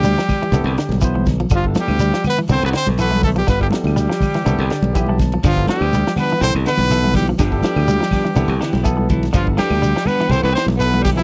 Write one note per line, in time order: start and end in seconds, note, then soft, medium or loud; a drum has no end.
0.00 0.15 D2 loud
0.00 0.99 G3 medium
0.00 1.00 G4 loud
0.00 shekere loud
0.05 0.15 G3 medium
0.05 snare soft
0.05 ride bell medium
0.05 high conga medium
0.18 0.37 F3 medium
0.18 snare medium
0.29 kick medium
0.29 open hi-hat medium
0.29 high conga medium
0.29 low conga medium
0.29 claves medium
0.29 shekere soft
0.42 0.51 E3 medium
0.42 ride bell medium
0.52 0.64 C2 loud
0.52 0.73 D3 medium
0.52 0.72 B3 loud
0.52 0.72 E4 medium
0.52 0.73 A4 loud
0.52 ride bell medium
0.52 shekere medium
0.64 0.76 C2 loud
0.64 claves medium
0.78 0.98 D3 medium
0.78 snare medium
0.78 ride bell soft
0.78 shekere soft
0.89 1.44 B1 medium
0.89 snare soft
0.89 ride bell medium
0.89 high conga loud
1.01 1.12 E3 medium
1.01 1.25 B3 loud
1.01 1.25 E4 medium
1.01 1.26 C5 loud
1.01 kick medium
1.01 ride bell medium
1.01 claves medium
1.01 shekere medium
1.15 1.35 E3 medium
1.15 high conga medium
1.26 kick medium
1.26 snare soft
1.26 ride bell medium
1.26 low conga medium
1.26 shekere soft
1.40 1.49 F3 medium
1.40 ride bell medium
1.50 1.73 G1 loud
1.50 1.71 D3 medium
1.50 kick loud
1.50 ride bell medium
1.50 claves medium
1.50 shekere loud
1.54 1.65 F3 medium
1.54 1.66 F4 medium
1.64 1.95 B3 medium
1.64 1.96 E4 medium
1.64 1.96 A4 medium
1.64 kick medium
1.75 1.95 F3 medium
1.75 snare medium
1.75 ride bell medium
1.75 high conga medium
1.75 shekere soft
1.80 2.24 G3 medium
1.80 2.24 G4 loud
1.88 2.11 D2 medium
1.88 snare soft
1.88 high conga medium
1.88 low conga medium
1.88 claves medium
1.99 2.11 G3 medium
1.99 ride bell medium
1.99 shekere loud
2.14 2.33 F3 medium
2.14 snare medium
2.24 2.37 B3 loud
2.24 open hi-hat medium
2.24 high conga loud
2.24 low conga medium
2.24 claves medium
2.24 shekere soft
2.30 2.39 B4 loud
2.37 2.47 E3 medium
2.37 ride bell medium
2.48 2.61 C2 loud
2.48 2.69 D3 medium
2.48 2.67 B3 medium
2.48 2.62 C4 loud
2.48 2.68 E4 medium
2.48 2.68 A4 medium
2.48 ride bell medium
2.48 shekere medium
2.52 2.63 C5 loud
2.62 2.73 C2 loud
2.62 2.70 B4 loud
2.62 claves medium
2.67 2.71 B3 medium
2.73 2.93 D3 medium
2.73 2.86 C4 loud
2.73 2.87 C5 loud
2.73 snare medium
2.73 ride bell medium
2.73 shekere soft
2.86 3.41 B1 loud
2.86 snare soft
2.86 ride bell medium
2.86 high conga loud
2.98 3.09 E3 medium
2.98 3.21 B3 medium
2.98 3.22 B3 medium
2.98 3.21 E4 medium
2.98 3.22 A4 loud
2.98 3.22 B4 loud
2.98 ride bell medium
2.98 claves medium
2.98 shekere loud
3.11 3.31 E3 medium
3.11 high conga medium
3.22 3.31 A3 medium
3.22 3.29 A4 loud
3.22 kick medium
3.22 open hi-hat medium
3.22 low conga medium
3.22 shekere soft
3.36 3.45 F3 medium
3.36 3.47 G3 medium
3.36 3.48 G4 loud
3.36 ride bell medium
3.47 3.69 G1 loud
3.47 3.67 D3 medium
3.47 3.59 B3 medium
3.47 3.60 B4 loud
3.47 kick loud
3.47 snare soft
3.47 ride bell medium
3.47 claves medium
3.47 shekere loud
3.60 3.65 G3 medium
3.60 3.91 B3 medium
3.60 3.92 E4 medium
3.60 3.67 G4 medium
3.60 3.92 A4 medium
3.60 kick medium
3.71 3.91 F3 medium
3.71 5.15 G3 medium
3.71 snare medium
3.71 ride bell medium
3.71 high conga loud
3.71 shekere soft
3.75 5.16 G4 medium
3.84 4.06 D2 medium
3.84 snare soft
3.84 high conga medium
3.84 low conga medium
3.84 claves medium
3.96 4.06 G3 medium
3.96 snare soft
3.96 ride bell medium
3.96 shekere loud
4.09 4.29 F3 medium
4.09 snare medium
4.20 kick medium
4.20 open hi-hat medium
4.20 high conga medium
4.20 low conga medium
4.20 claves medium
4.20 shekere soft
4.34 4.44 E3 medium
4.34 snare soft
4.34 ride bell medium
4.44 4.57 C2 loud
4.44 4.65 D3 medium
4.44 4.63 B3 medium
4.44 4.64 E4 medium
4.44 4.64 A4 loud
4.44 ride bell medium
4.44 shekere loud
4.59 4.69 C2 loud
4.59 claves medium
4.70 4.90 D3 medium
4.70 4.93 D5 medium
4.70 snare medium
4.70 ride bell medium
4.70 shekere soft
4.82 5.37 B1 medium
4.82 ride bell medium
4.82 high conga loud
4.94 5.06 E3 medium
4.94 5.16 B3 medium
4.94 5.17 E4 medium
4.94 5.17 G4 loud
4.94 5.06 E5 medium
4.94 kick medium
4.94 ride bell medium
4.94 claves medium
4.94 shekere loud
5.07 5.28 E3 medium
5.07 5.41 A5 medium
5.07 high conga medium
5.18 kick medium
5.18 snare soft
5.18 ride bell medium
5.18 low conga medium
5.18 shekere soft
5.32 5.42 F3 medium
5.32 ride bell medium
5.43 5.66 G1 loud
5.43 5.63 D3 loud
5.43 5.58 F3 medium
5.43 5.67 F3 medium
5.43 5.59 B3 medium
5.43 5.59 D4 medium
5.43 5.67 F4 loud
5.43 5.59 G4 medium
5.43 kick loud
5.43 ride bell medium
5.43 claves medium
5.43 shekere medium
5.56 5.87 B3 medium
5.56 5.87 E4 medium
5.56 5.88 A4 medium
5.56 kick medium
5.67 5.83 F3 medium
5.67 5.88 F3 medium
5.67 6.14 G3 medium
5.67 5.83 B3 medium
5.67 5.83 D4 medium
5.67 5.83 G4 medium
5.67 6.14 G4 loud
5.67 snare medium
5.67 ride bell medium
5.67 high conga loud
5.67 shekere soft
5.81 6.03 D2 medium
5.81 claves medium
5.92 6.04 G3 medium
5.92 snare soft
5.92 ride bell medium
5.92 high conga medium
5.92 shekere loud
6.07 6.26 F3 medium
6.07 snare medium
6.16 6.31 F3 medium
6.16 6.39 B3 medium
6.16 6.32 B3 medium
6.16 6.32 D4 medium
6.16 6.32 G4 medium
6.16 6.40 B4 loud
6.16 open hi-hat medium
6.16 high conga medium
6.16 low conga medium
6.16 claves medium
6.16 shekere soft
6.30 6.40 E3 medium
6.30 ride bell medium
6.40 6.53 C2 loud
6.40 6.62 D3 medium
6.40 6.56 E3 medium
6.40 6.59 B3 medium
6.40 6.52 C4 loud
6.40 6.59 E4 medium
6.40 6.56 E4 medium
6.40 6.60 A4 medium
6.40 6.54 C5 loud
6.40 muted clean electric guitar stroke medium
6.40 snare soft
6.40 ride bell medium
6.40 shekere loud
6.55 6.65 C2 loud
6.55 claves medium
6.65 6.86 D3 medium
6.65 6.78 E3 medium
6.65 7.11 B3 medium
6.65 6.78 B3 medium
6.65 6.78 E4 medium
6.65 6.77 G4 medium
6.65 7.12 B4 loud
6.65 snare medium
6.65 ride bell medium
6.65 shekere soft
6.78 7.33 B1 loud
6.78 6.93 B3 soft
6.78 6.92 E4 soft
6.78 6.92 G4 medium
6.78 snare soft
6.78 ride bell soft
6.78 high conga loud
6.90 7.01 E3 medium
6.90 7.12 B3 medium
6.90 7.13 E4 medium
6.90 7.13 A4 loud
6.90 snare soft
6.90 ride bell medium
6.90 claves medium
6.90 shekere loud
7.03 7.23 E3 medium
7.03 high conga medium
7.13 7.29 E3 medium
7.13 7.25 G3 medium
7.13 7.30 B3 medium
7.13 7.30 E4 medium
7.13 7.30 G4 medium
7.13 7.27 G4 medium
7.13 kick medium
7.13 open hi-hat medium
7.13 high conga medium
7.13 low conga medium
7.13 shekere soft
7.27 7.37 F3 medium
7.27 ride bell medium
7.38 7.61 G1 loud
7.38 7.59 D3 loud
7.38 7.54 F3 medium
7.38 8.81 G3 medium
7.38 7.54 B3 medium
7.38 7.54 D4 medium
7.38 7.54 G4 medium
7.38 8.82 G4 loud
7.38 kick loud
7.38 snare soft
7.38 ride bell medium
7.38 claves medium
7.38 shekere loud
7.51 7.82 B3 medium
7.51 7.82 E4 medium
7.51 7.83 A4 medium
7.51 kick medium
7.63 7.78 F3 medium
7.63 7.83 F3 medium
7.63 7.79 B3 medium
7.63 7.79 D4 medium
7.63 7.79 G4 medium
7.63 snare medium
7.63 ride bell medium
7.63 high conga loud
7.63 shekere soft
7.76 7.98 D2 medium
7.76 snare soft
7.76 low conga medium
7.76 claves medium
7.88 7.98 G3 medium
7.88 ride bell medium
7.88 high conga medium
7.88 shekere loud
8.00 8.20 F3 medium
8.00 snare medium
8.11 8.27 F3 medium
8.11 8.27 B3 medium
8.11 8.27 D4 medium
8.11 8.27 G4 medium
8.11 kick medium
8.11 open hi-hat medium
8.11 high conga medium
8.11 low conga medium
8.11 claves medium
8.11 shekere soft
8.25 8.34 E3 medium
8.25 ride bell medium
8.34 8.47 C2 loud
8.34 8.56 D3 medium
8.34 8.51 E3 medium
8.34 8.54 B3 loud
8.34 8.51 B3 medium
8.34 8.54 E4 medium
8.34 8.52 G4 loud
8.34 8.54 A4 loud
8.34 muted clean electric guitar stroke medium
8.34 ride bell medium
8.34 shekere loud
8.48 8.59 C2 loud
8.48 claves medium
8.60 8.80 D3 medium
8.60 8.73 E3 medium
8.60 8.73 B3 medium
8.60 8.74 E4 medium
8.60 8.73 G4 medium
8.60 snare medium
8.60 ride bell medium
8.60 shekere soft
8.73 9.28 B1 medium
8.73 8.88 B3 soft
8.73 8.88 E4 medium
8.73 8.88 G4 medium
8.73 snare soft
8.73 ride bell medium
8.73 high conga loud
8.83 8.95 E3 medium
8.83 9.07 B3 loud
8.83 9.07 E4 medium
8.83 9.08 A4 loud
8.83 9.30 A5 medium
8.83 kick medium
8.83 ride bell medium
8.83 claves medium
8.83 shekere medium
8.97 9.17 E3 medium
8.97 high conga medium
9.09 9.25 E3 medium
9.09 9.25 B3 medium
9.09 9.25 E4 medium
9.09 muted clean electric guitar stroke medium
9.09 kick medium
9.09 ride bell medium
9.09 high conga medium
9.09 low conga medium
9.09 shekere soft
9.23 snare soft
9.23 ride bell medium
9.33 9.56 G1 loud
9.33 9.53 D3 loud
9.33 9.49 F3 medium
9.33 9.45 F3 medium
9.33 9.49 B3 medium
9.33 9.49 D4 medium
9.33 9.46 F4 medium
9.33 muted clean electric guitar stroke medium
9.33 kick loud
9.33 ride bell medium
9.33 claves medium
9.33 shekere loud
9.45 9.77 B3 medium
9.45 9.77 E4 medium
9.45 9.78 A4 medium
9.45 kick medium
9.57 9.73 F3 medium
9.57 9.77 F3 medium
9.57 10.07 G3 medium
9.57 9.73 B3 medium
9.57 9.73 D4 medium
9.57 9.73 G4 medium
9.57 10.08 G4 loud
9.57 snare medium
9.57 ride bell medium
9.57 high conga loud
9.57 shekere soft
9.70 9.93 D2 medium
9.70 snare soft
9.70 high conga medium
9.70 low conga medium
9.70 claves medium
9.82 9.93 G3 medium
9.82 ride bell medium
9.82 shekere loud
9.96 10.15 F3 medium
9.96 snare medium
10.05 10.20 F3 medium
10.05 10.29 B3 loud
10.05 10.19 B3 medium
10.05 10.18 D4 medium
10.05 10.18 G4 medium
10.05 10.33 B4 loud
10.05 open hi-hat medium
10.05 high conga medium
10.05 low conga medium
10.05 claves medium
10.05 shekere soft
10.19 10.29 E3 medium
10.19 10.30 B3 soft
10.19 10.30 D4 soft
10.19 10.30 G4 medium
10.19 ride bell medium
10.28 10.42 C2 loud
10.28 10.46 E3 medium
10.28 10.49 B3 medium
10.28 10.46 B3 medium
10.28 10.41 C4 loud
10.28 10.46 E4 medium
10.28 10.50 E4 medium
10.28 10.47 G4 medium
10.28 10.50 A4 medium
10.28 10.43 C5 loud
10.28 muted clean electric guitar stroke medium
10.32 ride bell soft
10.32 shekere medium
10.42 10.54 C2 loud
10.42 10.52 B3 medium
10.42 10.55 B4 loud
10.42 claves medium
10.52 10.70 E3 medium
10.52 10.71 B3 medium
10.52 10.64 C4 medium
10.52 10.71 E4 medium
10.52 10.71 G4 medium
10.52 10.67 C5 loud
10.57 snare medium
10.57 ride bell soft
10.57 shekere soft
10.66 11.22 B1 medium
10.66 ride bell medium
10.66 high conga loud
10.71 snare soft
10.76 11.00 B3 medium
10.76 11.03 B4 loud
10.80 11.03 B3 medium
10.80 11.03 E4 medium
10.80 11.03 A4 medium
10.80 muted clean electric guitar stroke medium
10.80 ride bell soft
10.80 claves medium
10.80 shekere loud
10.94 11.13 E3 medium
10.94 high conga medium
11.01 11.08 G3 medium
11.01 11.10 G4 loud
11.01 shekere soft
11.05 11.20 E3 medium
11.05 11.20 B3 medium
11.05 11.20 E4 medium
11.05 11.21 G4 medium
11.05 kick medium
11.05 open hi-hat medium
11.05 low conga medium
11.14 11.20 E3 medium
11.14 11.23 F3 medium
11.14 11.22 E4 medium
11.19 snare soft
11.19 ride bell medium